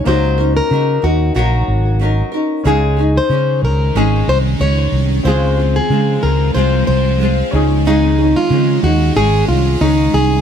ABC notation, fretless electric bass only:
X:1
M:4/4
L:1/8
Q:"Swing 16ths" 1/4=92
K:Db
V:1 name="Fretless electric bass" clef=bass
D,,2 D, E,, B,,, A,,,2 z | D,,2 D, D,, A,,, C,, D,, C,, | D,,2 D, D,, C,, C,,2 D,,- | D,,2 D, E,, A,,, C,, D,, C,, |]